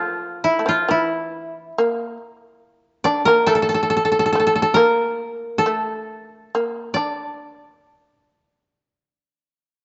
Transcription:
Already playing: shamisen F3, koto F4 A4
0.44 koto E4
0.59 shamisen A3
0.66 shamisen F3, koto F4
0.89 shamisen E3, koto E4
1.78 shamisen A#3
3.04 shamisen D4, koto D5
3.25 shamisen A#3, koto A#4
3.47 shamisen A3, koto A4
3.55 koto A4
3.62 koto A4
3.69 koto A4
3.74 koto A4
3.83 koto A4
3.90 koto A4
3.97 koto A4
4.05 koto A4
4.12 koto A4
4.19 koto A4
4.26 koto A4
4.33 shamisen A3, koto A4
4.40 koto A4
4.47 koto A4
4.56 koto A4
4.62 koto A4
4.74 shamisen A#3, koto A#4
5.58 koto A4
5.66 shamisen A3
6.55 shamisen A#3
6.94 shamisen D4, koto D5

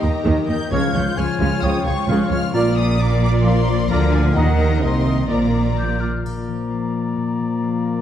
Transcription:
Already playing: harp D#3 G3 G4 A#4, viola section D#4, violin section G4 A#4, clarinet D#5
0.02 cello section D#2, double bass section D#2, viola section D#3, harp D#4, oboe D#5, flute G5, violin section A#5
0.25 cello section D#2, double bass section D#2, viola section D#3, harp G4, oboe D#5, flute G5
0.48 cello section D#2, double bass section D#2, viola section D#3, harp A#4, oboe D#5, flute G5, violin section G6
0.71 cello section C#2, double bass section C#2, harp C#3, viola section C#3 F4, trombone section C#3 F3, french horn section G#3 F4, violin section F4 C#5 G#6, trumpet C#5, oboe C#5, clarinet F5, flute F5
0.94 cello section C#2, double bass section C#2, harp F3, viola section G#3, oboe C#5, flute F5, violin section G6
1.17 cello section C#2, double bass section C#2, viola section F3, harp C#5, oboe C#5, flute F5, clarinet G#5, violin section F6
1.39 cello section C#2, double bass section C#2, viola section C#3, harp F4, oboe C#5, flute F5, violin section F6
1.61 cello section C#2, double bass section C#2, trombone section C#3 F3, viola section G#3, french horn section G#3, harp C#4, trumpet C#5, oboe C#5, flute F5, clarinet G5, violin section D#6
1.65 french horn section F4
1.84 cello section C#2, double bass section C#2, harp F3, viola section F3, oboe C#5, flute F5, violin section C#6
2.07 cello section C#2, double bass section C#2, viola section C#3, harp C#5, oboe C#5, clarinet F5, flute F5
2.30 cello section C#2, double bass section C#2, viola section G#3, harp F4, oboe C#5, flute F5, violin section F6
2.52 double bass section A#1, trombone section A#2 F3, harp A#2, cello section A#2, viola section A#3 F4, french horn section A#3 F4, violin section A#4 D5 F6, trumpet D5, clarinet D5, oboe D5, flute A#5
2.76 harp A#3, oboe D5, flute A#5, violin section D#6
2.99 viola section A#3 F4, violin section A#4 D5 D6, harp D5, oboe D5, flute A#5
3.22 harp F4, oboe D5, flute A#5, violin section D6
3.42 trombone section A#2 F3, harp F3, french horn section A#3 F4, trumpet D5, violin section C6
3.46 oboe D5, flute A#5
3.67 harp A#3, oboe D5, flute A#5
3.90 double bass section D2, cello section D3, viola section A#3 F4, violin section A#4 D5 A#5, harp D5, oboe D5, clarinet F5, flute A#5
4.14 harp F4, oboe D5, violin section G#5, flute A#5
4.34 double bass section D#2, trombone section A#2 D#3, cello section D#3, harp D#3, viola section A#3 D#4, french horn section A#3 A#4, violin section A#4 D#5 F#5, trumpet D#5, clarinet F#5, flute A#5
4.38 oboe D#5
4.60 harp D#4, oboe D#5, violin section A#5, flute A#5
4.83 double bass section C2, cello section C3, harp A#4, clarinet D#5, oboe D#5, flute A#5, violin section C6
5.08 oboe D#5, flute A#5
5.28 double bass section A#1, trombone section A#2 F3, cello section A#2, harp A#2, french horn section A#3 A#4, viola section A#3 F4, violin section A#4 D5 A#5, oboe D5, trumpet D5, clarinet D5
5.33 flute A#5
5.54 harp A#3, oboe D5, flute A#5
5.78 oboe D5, harp D5, flute G6
6.00 harp F4, oboe D5, flute F6
6.25 harp A#2, french horn section A#3, clarinet F4, oboe D5, flute A#5, triangle
6.48 harp F3
6.71 harp F4
6.94 harp A#4
7.16 harp A#2
7.39 harp F3
7.62 harp F4
7.85 harp A#4

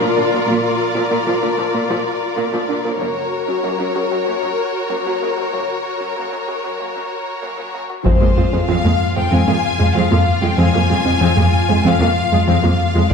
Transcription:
Already playing: viola section F4, violin section A#4 D5
0.00 cello section A#2, viola section F3, synth arpeggio sound D4
0.16 cello section A#2, viola section D3, synth arpeggio sound D4
0.32 cello section A#2, viola section F3, synth arpeggio sound A#4
0.48 double bass section A#1, cello section A#2, synth arpeggio sound A#3, viola section A#3
0.95 cello section A#2, viola section F3, synth arpeggio sound F4
1.11 cello section A#2, viola section A#3, synth arpeggio sound A#3
1.27 cello section A#2, viola section F3, synth arpeggio sound F4
1.42 cello section A#2, viola section D3, synth arpeggio sound A#4
1.59 cello section A#2, viola section F3, synth arpeggio sound A#4
1.74 cello section A#2, viola section A#3, synth arpeggio sound A#3
1.90 cello section A#2, viola section F3, synth arpeggio sound F4
2.37 cello section A#2, viola section A#3, synth arpeggio sound A#3
2.53 cello section A#2, viola section F3, synth arpeggio sound D4
2.69 cello section A#2, viola section D3, synth arpeggio sound D4
2.84 cello section A#2, viola section F3, synth arpeggio sound A#4
3.00 double bass section F#1, cello section F#2, synth arpeggio sound F#3, viola section A#3 F#4, violin section A#4 C#5
3.48 cello section F#2, viola section F#3, synth arpeggio sound C#4
3.64 cello section F#2, synth arpeggio sound F#3, viola section A#3
3.79 cello section F#2, viola section F#3, synth arpeggio sound C#4
3.95 cello section F#2, viola section C#3, synth arpeggio sound F#4
4.11 cello section F#2, viola section F#3, synth arpeggio sound F#4
4.26 cello section F#2, synth arpeggio sound F#3, viola section A#3
4.42 cello section F#2, viola section F#3, synth arpeggio sound C#4
4.90 cello section F#2, synth arpeggio sound F#3, viola section A#3
5.06 cello section F#2, viola section F#3, synth arpeggio sound A#3
5.22 cello section F#2, viola section C#3, synth arpeggio sound A#3
5.37 cello section F#2, viola section F#3, synth arpeggio sound F#4
5.53 double bass section F#1, cello section F#2, synth arpeggio sound F#3, viola section A#3
6.01 cello section F#2, viola section F#3, synth arpeggio sound C#4
6.16 cello section F#2, synth arpeggio sound F#3, viola section A#3
6.32 cello section F#2, viola section F#3, synth arpeggio sound C#4
6.48 cello section F#2, viola section C#3, synth arpeggio sound F#4
6.64 cello section F#2, viola section F#3, synth arpeggio sound F#4
6.79 cello section F#2, synth arpeggio sound F#3, viola section A#3
6.95 cello section F#2, viola section F#3, synth arpeggio sound C#4
7.43 cello section F#2, synth arpeggio sound F#3, viola section A#3
7.58 cello section F#2, viola section F#3, synth arpeggio sound A#3
7.74 cello section F#2, viola section C#3, synth arpeggio sound A#3
7.89 cello section F#2, viola section F#3, synth arpeggio sound F#4
8.05 cello section F2, synth arpeggio sound F3, viola section G#3 C4, violin section F4 C5 F5, taiko
8.21 cello section F2, viola section G#3 A#3, synth arpeggio sound F4
8.37 cello section F2, viola section G#3 C4, synth arpeggio sound F4
8.53 cello section F2, viola section G#3, synth arpeggio sound C4
8.69 cello section F2, synth arpeggio sound F3, viola section G#3 C4, violin section F5
8.85 cello section F2, viola section G#3 A#3, synth arpeggio sound G#3
9.16 cello section F2, viola section G#3, synth arpeggio sound C4, violin section G5
9.32 cello section F2, synth arpeggio sound F3, viola section G#3 C4, violin section G#5
9.48 cello section F2, viola section G#3 A#3, synth arpeggio sound C4
9.79 cello section F2, synth arpeggio sound G#3, viola section G#3
9.95 cello section F2, synth arpeggio sound F3, viola section G#3 C4, violin section F5
10.11 cello section F2, viola section G#3 A#3, synth arpeggio sound F4
10.42 cello section F2, viola section G#3, synth arpeggio sound F4, violin section G5
10.58 cello section F2, synth arpeggio sound F3, viola section G#3 C4, violin section G#5
10.74 cello section F2, viola section G#3 A#3, synth arpeggio sound F4
10.90 cello section F2, viola section G#3 C4, synth arpeggio sound F4
11.06 cello section F2, viola section G#3, synth arpeggio sound C4
11.21 cello section F2, synth arpeggio sound F3, viola section G#3 C4
11.37 cello section F2, synth arpeggio sound G#3, viola section G#3 A#3
11.69 cello section F2, viola section G#3, synth arpeggio sound C4
11.84 cello section F2, synth arpeggio sound F3, viola section G#3 C4, violin section F5
12.00 cello section F2, viola section G#3 A#3, synth arpeggio sound C4
12.32 cello section F2, viola section G#3, synth arpeggio sound G#3
12.48 cello section F2, synth arpeggio sound F3, viola section G#3 C4, violin section F5
12.64 cello section F2, viola section G#3 A#3, synth arpeggio sound F4
12.95 cello section F2, viola section G#3, synth arpeggio sound F4
13.11 synth arpeggio sound D3, violin section F4

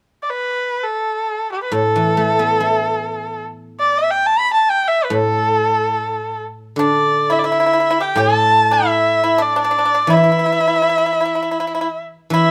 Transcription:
0.23 erhu D5
0.30 erhu B4
0.84 erhu A4
1.52 erhu G4
1.63 erhu B4
1.72 guzheng A2, erhu A4
1.96 guzheng E3
2.17 guzheng A3
2.39 guzheng B3
2.60 guzheng E4
3.80 erhu D5
3.98 erhu E5
4.10 erhu G5
4.26 erhu A5
4.39 erhu B5
4.54 erhu A5
4.70 erhu G5
4.88 erhu E5
5.05 erhu B4
5.10 guzheng A2
5.15 erhu A4
6.76 guzheng D3, pipa D4, erhu D5
7.30 pipa E4, erhu E5
7.39 erhu D5
7.44 pipa E4, erhu E5
7.52 pipa E4
7.60 pipa E4
7.66 pipa E4
7.73 pipa E4
7.80 pipa E4
7.91 pipa E4
8.00 pipa G4, erhu G5
8.16 guzheng A2, pipa A4
8.20 erhu A5
8.71 pipa E4, erhu E5
9.24 pipa E4
9.38 pipa D4, erhu D5
9.56 pipa D4
9.61 pipa D4, erhu D5
9.71 pipa D4
9.79 pipa D4
9.85 pipa D4
9.94 pipa D4
10.07 guzheng E3, pipa E4
10.13 erhu E5
10.17 pipa E4
10.24 pipa E4
10.32 pipa E4
10.39 pipa E4
10.46 pipa E4
10.52 pipa E4
10.60 pipa E4
10.68 pipa E4
10.76 pipa E4
10.82 pipa E4
10.89 pipa E4
10.98 pipa E4
11.06 pipa E4
11.21 pipa E4
11.25 pipa E4
11.35 pipa E4
11.42 pipa E4
11.51 pipa E4
11.60 pipa E4
11.67 pipa E4
11.75 pipa E4
11.81 pipa E4
12.30 guzheng E3, pipa E4, erhu E5

